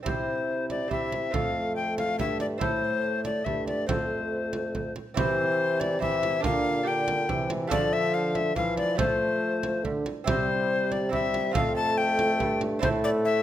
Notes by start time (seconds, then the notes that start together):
0.03 C3 C4 E4 G4 C5, frame drum
0.70 D5, frame drum
0.88 C4 E4 G4 E5, frame drum
1.12 frame drum
1.31 F2 A3 C4 F4 A4 F5, frame drum
1.76 G5
1.98 F5, frame drum
2.18 G2 E5, frame drum
2.40 D5, frame drum
2.58 A2 A3 C4 E4 A4 C5, frame drum
3.25 D5, frame drum
3.45 G2 A3 E5, frame drum
3.67 D5, frame drum
3.86 F2 A3 C4 F4 A4 C5, frame drum
4.53 frame drum
4.75 frame drum
4.96 frame drum
5.14 C3 E3 C4 E4 G4 C5, frame drum
5.80 D5, frame drum
5.99 E3 C4 E4 G4 E5, frame drum
6.23 frame drum
6.40 A#2 D3 D4 G4 A#4, frame drum
6.44 A#2 F5
6.83 D3 D4 G4 A#4
6.87 G5
7.08 frame drum
7.28 C3 E3, frame drum
7.50 frame drum
7.67 D3 F3 A3 A4 D5 F5, frame drum
7.93 E5
8.14 F5
8.35 E5, frame drum
8.56 E3 F3 F5, frame drum
8.77 D5, frame drum
8.95 F3 A3 F4 A4 C5, frame drum
9.63 frame drum
9.84 D3, frame drum
10.06 frame drum
10.24 C3 G3 C4 E4 G4 C5, frame drum
10.92 D5, frame drum
11.09 G3 C4 E4 G4 E5, frame drum
11.34 frame drum
11.51 F2 A3 C4 F4 A4 F5, frame drum
11.76 A5
11.98 G5
12.19 frame drum
12.40 G2, frame drum
12.61 frame drum
12.79 A2 A3 C4 E4 A4 C5, frame drum
13.04 D5
13.25 E5